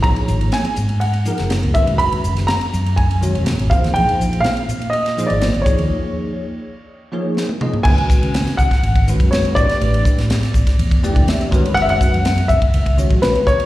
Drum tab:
CC |----------------|----------------|----------------|----------------|
RD |xx-xxx-xxx-xxx-x|xx-xxx-xxx-xxx-x|xx-xxx-xxx-xxx-x|----------------|
HH |--p---p---p---p-|--p---p---p---p-|--p---p---p---p-|----------------|
SD |----o------oo---|---oo-------o--o|----o----o--o---|------------o---|
T1 |----------------|----------------|----------------|-------------o--|
T2 |----------------|----------------|----------------|--------------o-|
FT |----------------|----------------|----------------|---------------o|
BD |o-------------o-|--------o-----o-|--------------o-|----------------|

CC |x---------------|----------------|----------------|
RD |-x-xxx-xxx-xxx-x|xx-xxx-xxx-xxx-x|xx-xxx-xxx-xxx-x|
HH |--p---p---p---p-|--p---p---p---p-|--p---p---p---p-|
SD |----oo-o----o--o|---ooo-o----o---|----o-------o---|
T1 |----------------|----------------|----------------|
T2 |----------------|----------------|----------------|
FT |----------------|----------------|----------------|
BD |o-o---oo-o-o--o-|--o---oo-o-o--o-|--o---oo-o-o--o-|